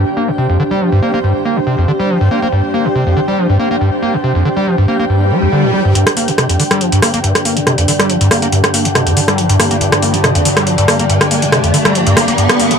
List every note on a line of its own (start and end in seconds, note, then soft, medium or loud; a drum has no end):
0.00 12.79 D4 medium
0.00 12.79 G4 medium
0.00 6.88 C5 medium
0.00 12.79 G5 medium
0.17 0.30 A#3 medium
0.28 0.31 G2 loud
0.38 0.48 C3 medium
0.49 0.58 F2 medium
0.60 0.63 D3 loud
0.71 0.83 G3 loud
0.81 0.90 F3 loud
0.92 1.01 G2 loud
1.02 1.12 A#3 medium
1.14 1.19 A#3 loud
1.24 1.33 G2 medium
1.45 1.58 A#3 medium
1.57 1.60 G2 loud
1.67 1.76 C3 medium
1.78 1.86 F2 medium
1.88 1.92 D3 medium
2.00 2.11 G3 loud
2.10 2.19 F3 loud
2.21 2.29 G2 loud
2.31 2.40 A#3 medium
2.42 2.48 A#3 loud
2.52 2.62 G2 medium
2.74 2.87 A#3 medium
2.85 2.89 G2 loud
2.95 3.05 C3 medium
3.07 3.15 F2 medium
3.17 3.20 D3 loud
3.28 3.40 G3 loud
3.38 3.47 F3 medium
3.49 3.58 G2 loud
3.60 3.69 A#3 medium
3.71 3.76 A#3 loud
3.81 3.90 G2 medium
4.02 4.15 A#3 medium
4.14 4.17 G2 loud
4.24 4.33 C3 medium
4.35 4.44 F2 medium
4.45 4.49 D3 loud
4.57 4.68 G3 loud
4.67 4.76 F3 loud
4.78 4.86 G2 loud
4.88 4.98 A#3 medium
4.99 5.05 A#3 loud
5.10 5.32 G2 medium
5.10 swell medium
5.31 5.40 G3 loud
5.42 5.48 F2 medium
5.52 5.65 D3 loud
5.64 5.72 A#2 loud
5.74 5.83 G3 medium
5.85 5.93 G2 medium
5.95 6.05 G2 medium
5.95 12.79 G2 medium
5.95 12.79 D3 medium
5.95 closed hi-hat medium
5.95 riser medium
6.07 cross-stick medium
6.07 closed hi-hat medium
6.17 6.29 A#3 medium
6.17 open hi-hat loud
6.28 6.31 G2 loud
6.28 closed hi-hat medium
6.38 6.48 C3 medium
6.38 cross-stick medium
6.38 closed hi-hat medium
6.49 6.58 F2 medium
6.49 closed hi-hat medium
6.60 6.63 D3 loud
6.60 open hi-hat medium
6.71 6.82 G3 loud
6.71 cross-stick medium
6.71 closed hi-hat medium
6.81 6.90 F3 loud
6.81 closed hi-hat medium
6.92 7.01 G2 loud
6.92 closed hi-hat medium
7.02 7.12 A#3 medium
7.02 cross-stick medium
7.02 open hi-hat loud
7.14 7.19 A#3 loud
7.14 closed hi-hat medium
7.22 7.33 G2 medium
7.22 12.79 D5 medium
7.22 closed hi-hat medium
7.35 cross-stick medium
7.35 closed hi-hat medium
7.45 7.58 A#3 medium
7.45 open hi-hat medium
7.57 7.60 G2 medium
7.57 closed hi-hat medium
7.67 7.76 C3 medium
7.67 cross-stick medium
7.67 closed hi-hat medium
7.78 7.86 F2 medium
7.78 closed hi-hat medium
7.88 7.92 D3 loud
7.88 open hi-hat loud
7.99 8.11 G3 loud
7.99 cross-stick medium
7.99 closed hi-hat medium
8.10 8.19 F3 loud
8.10 closed hi-hat medium
8.21 8.29 G2 loud
8.21 closed hi-hat medium
8.31 8.40 A#3 medium
8.31 cross-stick medium
8.31 open hi-hat medium
8.42 8.48 A#3 loud
8.42 closed hi-hat medium
8.52 8.62 G2 medium
8.52 closed hi-hat medium
8.64 cross-stick medium
8.64 closed hi-hat medium
8.74 8.87 A#3 medium
8.74 open hi-hat loud
8.85 8.89 G2 loud
8.85 closed hi-hat medium
8.95 9.05 C3 medium
8.95 cross-stick medium
8.95 closed hi-hat medium
9.07 9.15 F2 medium
9.07 closed hi-hat medium
9.17 9.20 D3 loud
9.17 open hi-hat medium
9.28 9.40 G3 medium
9.28 cross-stick medium
9.28 closed hi-hat medium
9.38 9.48 F3 loud
9.38 closed hi-hat medium
9.49 9.58 G2 loud
9.49 closed hi-hat medium
9.60 9.69 A#3 medium
9.60 cross-stick medium
9.60 open hi-hat loud
9.71 9.76 A#3 loud
9.71 closed hi-hat medium
9.81 9.90 G2 medium
9.81 closed hi-hat medium
9.92 cross-stick medium
9.92 closed hi-hat medium
10.02 10.15 A#3 medium
10.02 open hi-hat loud
10.14 10.17 G2 loud
10.14 closed hi-hat medium
10.24 10.33 C3 medium
10.24 cross-stick medium
10.24 closed hi-hat medium
10.35 10.44 F2 medium
10.35 closed hi-hat medium
10.45 10.49 D3 loud
10.45 open hi-hat loud
10.57 10.68 G3 loud
10.57 cross-stick medium
10.57 closed hi-hat medium
10.67 10.76 F3 loud
10.67 closed hi-hat medium
10.78 10.86 G2 loud
10.78 closed hi-hat medium
10.88 10.98 A#3 medium
10.88 cross-stick medium
10.88 open hi-hat medium
10.99 11.05 A#3 loud
10.99 closed hi-hat medium
11.10 11.19 G2 medium
11.10 closed hi-hat medium
11.21 cross-stick medium
11.21 closed hi-hat medium
11.31 11.44 A#3 medium
11.31 open hi-hat loud
11.42 11.46 G2 loud
11.42 closed hi-hat medium
11.52 11.62 C3 medium
11.52 cross-stick medium
11.52 closed hi-hat medium
11.64 11.72 F2 medium
11.64 closed hi-hat medium
11.74 11.78 D3 loud
11.74 open hi-hat loud
11.85 11.97 G3 loud
11.85 cross-stick medium
11.85 closed hi-hat medium
11.95 12.05 F3 loud
11.95 closed hi-hat medium
12.07 12.15 G2 loud
12.07 closed hi-hat medium
12.17 12.26 A#3 medium
12.17 cross-stick medium
12.17 open hi-hat loud
12.28 12.34 A#3 loud
12.28 closed hi-hat medium
12.38 12.47 G2 medium
12.38 closed hi-hat medium
12.49 cross-stick medium
12.49 closed hi-hat medium
12.60 12.72 A#3 medium
12.60 open hi-hat medium
12.71 12.74 G2 loud
12.71 closed hi-hat medium